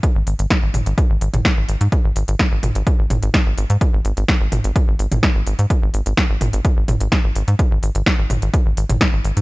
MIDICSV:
0, 0, Header, 1, 3, 480
1, 0, Start_track
1, 0, Tempo, 472441
1, 33, Time_signature, 4, 2, 24, 8
1, 9566, End_track
2, 0, Start_track
2, 0, Title_t, "Analog synth bass"
2, 0, Program_c, 0, 38
2, 157, Note_on_c, 0, 32, 95
2, 230, Note_off_c, 0, 32, 0
2, 272, Note_on_c, 0, 32, 101
2, 352, Note_off_c, 0, 32, 0
2, 397, Note_on_c, 0, 32, 90
2, 471, Note_off_c, 0, 32, 0
2, 637, Note_on_c, 0, 32, 92
2, 710, Note_off_c, 0, 32, 0
2, 752, Note_on_c, 0, 32, 99
2, 831, Note_off_c, 0, 32, 0
2, 877, Note_on_c, 0, 32, 95
2, 950, Note_off_c, 0, 32, 0
2, 1117, Note_on_c, 0, 32, 90
2, 1190, Note_off_c, 0, 32, 0
2, 1232, Note_on_c, 0, 32, 101
2, 1311, Note_off_c, 0, 32, 0
2, 1357, Note_on_c, 0, 32, 89
2, 1430, Note_off_c, 0, 32, 0
2, 1598, Note_on_c, 0, 32, 88
2, 1671, Note_off_c, 0, 32, 0
2, 1713, Note_on_c, 0, 32, 97
2, 1792, Note_off_c, 0, 32, 0
2, 1837, Note_on_c, 0, 44, 95
2, 1910, Note_off_c, 0, 44, 0
2, 2078, Note_on_c, 0, 32, 88
2, 2151, Note_off_c, 0, 32, 0
2, 2193, Note_on_c, 0, 32, 103
2, 2272, Note_off_c, 0, 32, 0
2, 2318, Note_on_c, 0, 32, 94
2, 2391, Note_off_c, 0, 32, 0
2, 2557, Note_on_c, 0, 32, 88
2, 2631, Note_off_c, 0, 32, 0
2, 2673, Note_on_c, 0, 32, 98
2, 2752, Note_off_c, 0, 32, 0
2, 2797, Note_on_c, 0, 32, 92
2, 2870, Note_off_c, 0, 32, 0
2, 3037, Note_on_c, 0, 32, 84
2, 3110, Note_off_c, 0, 32, 0
2, 3153, Note_on_c, 0, 32, 102
2, 3232, Note_off_c, 0, 32, 0
2, 3277, Note_on_c, 0, 32, 94
2, 3350, Note_off_c, 0, 32, 0
2, 3518, Note_on_c, 0, 32, 88
2, 3591, Note_off_c, 0, 32, 0
2, 3633, Note_on_c, 0, 32, 100
2, 3712, Note_off_c, 0, 32, 0
2, 3757, Note_on_c, 0, 44, 94
2, 3831, Note_off_c, 0, 44, 0
2, 3998, Note_on_c, 0, 32, 92
2, 4071, Note_off_c, 0, 32, 0
2, 4113, Note_on_c, 0, 32, 102
2, 4192, Note_off_c, 0, 32, 0
2, 4237, Note_on_c, 0, 32, 91
2, 4310, Note_off_c, 0, 32, 0
2, 4477, Note_on_c, 0, 32, 88
2, 4550, Note_off_c, 0, 32, 0
2, 4593, Note_on_c, 0, 32, 100
2, 4672, Note_off_c, 0, 32, 0
2, 4718, Note_on_c, 0, 32, 93
2, 4791, Note_off_c, 0, 32, 0
2, 4957, Note_on_c, 0, 32, 86
2, 5030, Note_off_c, 0, 32, 0
2, 5072, Note_on_c, 0, 32, 98
2, 5152, Note_off_c, 0, 32, 0
2, 5197, Note_on_c, 0, 32, 90
2, 5270, Note_off_c, 0, 32, 0
2, 5438, Note_on_c, 0, 32, 91
2, 5511, Note_off_c, 0, 32, 0
2, 5553, Note_on_c, 0, 32, 94
2, 5632, Note_off_c, 0, 32, 0
2, 5678, Note_on_c, 0, 44, 93
2, 5751, Note_off_c, 0, 44, 0
2, 5918, Note_on_c, 0, 32, 91
2, 5991, Note_off_c, 0, 32, 0
2, 6033, Note_on_c, 0, 32, 99
2, 6112, Note_off_c, 0, 32, 0
2, 6158, Note_on_c, 0, 32, 87
2, 6231, Note_off_c, 0, 32, 0
2, 6398, Note_on_c, 0, 32, 91
2, 6471, Note_off_c, 0, 32, 0
2, 6513, Note_on_c, 0, 32, 105
2, 6592, Note_off_c, 0, 32, 0
2, 6638, Note_on_c, 0, 32, 92
2, 6711, Note_off_c, 0, 32, 0
2, 6877, Note_on_c, 0, 32, 81
2, 6950, Note_off_c, 0, 32, 0
2, 6993, Note_on_c, 0, 32, 103
2, 7072, Note_off_c, 0, 32, 0
2, 7117, Note_on_c, 0, 32, 95
2, 7191, Note_off_c, 0, 32, 0
2, 7358, Note_on_c, 0, 32, 89
2, 7431, Note_off_c, 0, 32, 0
2, 7473, Note_on_c, 0, 32, 102
2, 7552, Note_off_c, 0, 32, 0
2, 7597, Note_on_c, 0, 44, 93
2, 7670, Note_off_c, 0, 44, 0
2, 7837, Note_on_c, 0, 32, 94
2, 7910, Note_off_c, 0, 32, 0
2, 7953, Note_on_c, 0, 32, 99
2, 8032, Note_off_c, 0, 32, 0
2, 8077, Note_on_c, 0, 32, 91
2, 8150, Note_off_c, 0, 32, 0
2, 8317, Note_on_c, 0, 32, 90
2, 8390, Note_off_c, 0, 32, 0
2, 8433, Note_on_c, 0, 32, 100
2, 8512, Note_off_c, 0, 32, 0
2, 8557, Note_on_c, 0, 32, 89
2, 8630, Note_off_c, 0, 32, 0
2, 8797, Note_on_c, 0, 32, 81
2, 8870, Note_off_c, 0, 32, 0
2, 8913, Note_on_c, 0, 32, 101
2, 8992, Note_off_c, 0, 32, 0
2, 9037, Note_on_c, 0, 32, 95
2, 9110, Note_off_c, 0, 32, 0
2, 9277, Note_on_c, 0, 32, 90
2, 9350, Note_off_c, 0, 32, 0
2, 9393, Note_on_c, 0, 32, 106
2, 9472, Note_off_c, 0, 32, 0
2, 9517, Note_on_c, 0, 44, 91
2, 9566, Note_off_c, 0, 44, 0
2, 9566, End_track
3, 0, Start_track
3, 0, Title_t, "Drums"
3, 33, Note_on_c, 9, 36, 113
3, 33, Note_on_c, 9, 42, 56
3, 134, Note_off_c, 9, 42, 0
3, 135, Note_off_c, 9, 36, 0
3, 273, Note_on_c, 9, 46, 107
3, 374, Note_off_c, 9, 46, 0
3, 398, Note_on_c, 9, 42, 56
3, 499, Note_off_c, 9, 42, 0
3, 513, Note_on_c, 9, 36, 125
3, 513, Note_on_c, 9, 38, 116
3, 513, Note_on_c, 9, 42, 54
3, 614, Note_off_c, 9, 36, 0
3, 614, Note_off_c, 9, 38, 0
3, 614, Note_off_c, 9, 42, 0
3, 753, Note_on_c, 9, 45, 90
3, 753, Note_on_c, 9, 46, 108
3, 854, Note_off_c, 9, 45, 0
3, 854, Note_off_c, 9, 46, 0
3, 877, Note_on_c, 9, 42, 58
3, 979, Note_off_c, 9, 42, 0
3, 993, Note_on_c, 9, 36, 127
3, 993, Note_on_c, 9, 42, 53
3, 1095, Note_off_c, 9, 36, 0
3, 1095, Note_off_c, 9, 42, 0
3, 1233, Note_on_c, 9, 46, 117
3, 1334, Note_off_c, 9, 46, 0
3, 1358, Note_on_c, 9, 42, 57
3, 1358, Note_on_c, 9, 45, 88
3, 1459, Note_off_c, 9, 42, 0
3, 1459, Note_off_c, 9, 45, 0
3, 1473, Note_on_c, 9, 36, 125
3, 1473, Note_on_c, 9, 38, 123
3, 1473, Note_on_c, 9, 42, 54
3, 1575, Note_off_c, 9, 36, 0
3, 1575, Note_off_c, 9, 38, 0
3, 1575, Note_off_c, 9, 42, 0
3, 1713, Note_on_c, 9, 46, 109
3, 1814, Note_off_c, 9, 46, 0
3, 1838, Note_on_c, 9, 42, 60
3, 1939, Note_off_c, 9, 42, 0
3, 1953, Note_on_c, 9, 36, 114
3, 1953, Note_on_c, 9, 42, 53
3, 2055, Note_off_c, 9, 36, 0
3, 2055, Note_off_c, 9, 42, 0
3, 2193, Note_on_c, 9, 46, 112
3, 2294, Note_off_c, 9, 46, 0
3, 2317, Note_on_c, 9, 42, 54
3, 2419, Note_off_c, 9, 42, 0
3, 2433, Note_on_c, 9, 36, 127
3, 2433, Note_on_c, 9, 38, 114
3, 2433, Note_on_c, 9, 42, 54
3, 2534, Note_off_c, 9, 38, 0
3, 2534, Note_off_c, 9, 42, 0
3, 2535, Note_off_c, 9, 36, 0
3, 2672, Note_on_c, 9, 45, 94
3, 2672, Note_on_c, 9, 46, 111
3, 2774, Note_off_c, 9, 45, 0
3, 2774, Note_off_c, 9, 46, 0
3, 2797, Note_on_c, 9, 42, 58
3, 2899, Note_off_c, 9, 42, 0
3, 2913, Note_on_c, 9, 36, 127
3, 2913, Note_on_c, 9, 42, 51
3, 3014, Note_off_c, 9, 36, 0
3, 3014, Note_off_c, 9, 42, 0
3, 3153, Note_on_c, 9, 45, 97
3, 3153, Note_on_c, 9, 46, 122
3, 3254, Note_off_c, 9, 45, 0
3, 3254, Note_off_c, 9, 46, 0
3, 3278, Note_on_c, 9, 42, 56
3, 3379, Note_off_c, 9, 42, 0
3, 3393, Note_on_c, 9, 36, 127
3, 3393, Note_on_c, 9, 38, 127
3, 3393, Note_on_c, 9, 42, 57
3, 3494, Note_off_c, 9, 36, 0
3, 3495, Note_off_c, 9, 38, 0
3, 3495, Note_off_c, 9, 42, 0
3, 3633, Note_on_c, 9, 46, 110
3, 3735, Note_off_c, 9, 46, 0
3, 3758, Note_on_c, 9, 42, 54
3, 3859, Note_off_c, 9, 42, 0
3, 3873, Note_on_c, 9, 36, 116
3, 3873, Note_on_c, 9, 42, 55
3, 3974, Note_off_c, 9, 36, 0
3, 3974, Note_off_c, 9, 42, 0
3, 4113, Note_on_c, 9, 46, 102
3, 4215, Note_off_c, 9, 46, 0
3, 4238, Note_on_c, 9, 42, 57
3, 4339, Note_off_c, 9, 42, 0
3, 4353, Note_on_c, 9, 36, 122
3, 4353, Note_on_c, 9, 38, 108
3, 4353, Note_on_c, 9, 42, 55
3, 4454, Note_off_c, 9, 36, 0
3, 4454, Note_off_c, 9, 38, 0
3, 4454, Note_off_c, 9, 42, 0
3, 4593, Note_on_c, 9, 45, 98
3, 4593, Note_on_c, 9, 46, 108
3, 4694, Note_off_c, 9, 45, 0
3, 4694, Note_off_c, 9, 46, 0
3, 4717, Note_on_c, 9, 42, 58
3, 4819, Note_off_c, 9, 42, 0
3, 4833, Note_on_c, 9, 36, 123
3, 4833, Note_on_c, 9, 42, 53
3, 4935, Note_off_c, 9, 36, 0
3, 4935, Note_off_c, 9, 42, 0
3, 5073, Note_on_c, 9, 46, 116
3, 5175, Note_off_c, 9, 46, 0
3, 5198, Note_on_c, 9, 42, 57
3, 5198, Note_on_c, 9, 45, 93
3, 5299, Note_off_c, 9, 42, 0
3, 5299, Note_off_c, 9, 45, 0
3, 5313, Note_on_c, 9, 36, 127
3, 5313, Note_on_c, 9, 38, 112
3, 5313, Note_on_c, 9, 42, 58
3, 5415, Note_off_c, 9, 36, 0
3, 5415, Note_off_c, 9, 38, 0
3, 5415, Note_off_c, 9, 42, 0
3, 5553, Note_on_c, 9, 46, 103
3, 5655, Note_off_c, 9, 46, 0
3, 5678, Note_on_c, 9, 42, 57
3, 5779, Note_off_c, 9, 42, 0
3, 5793, Note_on_c, 9, 36, 110
3, 5793, Note_on_c, 9, 42, 58
3, 5895, Note_off_c, 9, 36, 0
3, 5895, Note_off_c, 9, 42, 0
3, 6033, Note_on_c, 9, 46, 104
3, 6134, Note_off_c, 9, 46, 0
3, 6158, Note_on_c, 9, 42, 60
3, 6259, Note_off_c, 9, 42, 0
3, 6273, Note_on_c, 9, 36, 113
3, 6273, Note_on_c, 9, 38, 111
3, 6273, Note_on_c, 9, 42, 57
3, 6374, Note_off_c, 9, 38, 0
3, 6374, Note_off_c, 9, 42, 0
3, 6375, Note_off_c, 9, 36, 0
3, 6513, Note_on_c, 9, 45, 104
3, 6513, Note_on_c, 9, 46, 106
3, 6614, Note_off_c, 9, 45, 0
3, 6614, Note_off_c, 9, 46, 0
3, 6637, Note_on_c, 9, 42, 61
3, 6739, Note_off_c, 9, 42, 0
3, 6753, Note_on_c, 9, 36, 111
3, 6753, Note_on_c, 9, 42, 55
3, 6854, Note_off_c, 9, 42, 0
3, 6855, Note_off_c, 9, 36, 0
3, 6993, Note_on_c, 9, 45, 102
3, 6993, Note_on_c, 9, 46, 109
3, 7094, Note_off_c, 9, 45, 0
3, 7094, Note_off_c, 9, 46, 0
3, 7117, Note_on_c, 9, 42, 57
3, 7219, Note_off_c, 9, 42, 0
3, 7233, Note_on_c, 9, 36, 127
3, 7233, Note_on_c, 9, 38, 116
3, 7233, Note_on_c, 9, 42, 59
3, 7334, Note_off_c, 9, 38, 0
3, 7334, Note_off_c, 9, 42, 0
3, 7335, Note_off_c, 9, 36, 0
3, 7473, Note_on_c, 9, 46, 97
3, 7574, Note_off_c, 9, 46, 0
3, 7597, Note_on_c, 9, 42, 59
3, 7699, Note_off_c, 9, 42, 0
3, 7713, Note_on_c, 9, 36, 110
3, 7713, Note_on_c, 9, 42, 59
3, 7815, Note_off_c, 9, 36, 0
3, 7815, Note_off_c, 9, 42, 0
3, 7953, Note_on_c, 9, 46, 98
3, 8055, Note_off_c, 9, 46, 0
3, 8078, Note_on_c, 9, 42, 58
3, 8179, Note_off_c, 9, 42, 0
3, 8193, Note_on_c, 9, 36, 111
3, 8193, Note_on_c, 9, 38, 122
3, 8193, Note_on_c, 9, 42, 59
3, 8294, Note_off_c, 9, 36, 0
3, 8295, Note_off_c, 9, 38, 0
3, 8295, Note_off_c, 9, 42, 0
3, 8433, Note_on_c, 9, 45, 94
3, 8433, Note_on_c, 9, 46, 103
3, 8535, Note_off_c, 9, 45, 0
3, 8535, Note_off_c, 9, 46, 0
3, 8557, Note_on_c, 9, 42, 57
3, 8659, Note_off_c, 9, 42, 0
3, 8673, Note_on_c, 9, 36, 114
3, 8673, Note_on_c, 9, 42, 61
3, 8774, Note_off_c, 9, 36, 0
3, 8774, Note_off_c, 9, 42, 0
3, 8913, Note_on_c, 9, 46, 105
3, 9014, Note_off_c, 9, 46, 0
3, 9038, Note_on_c, 9, 42, 60
3, 9038, Note_on_c, 9, 45, 92
3, 9139, Note_off_c, 9, 42, 0
3, 9139, Note_off_c, 9, 45, 0
3, 9153, Note_on_c, 9, 36, 116
3, 9153, Note_on_c, 9, 38, 127
3, 9153, Note_on_c, 9, 42, 59
3, 9255, Note_off_c, 9, 36, 0
3, 9255, Note_off_c, 9, 38, 0
3, 9255, Note_off_c, 9, 42, 0
3, 9393, Note_on_c, 9, 46, 98
3, 9495, Note_off_c, 9, 46, 0
3, 9518, Note_on_c, 9, 42, 62
3, 9566, Note_off_c, 9, 42, 0
3, 9566, End_track
0, 0, End_of_file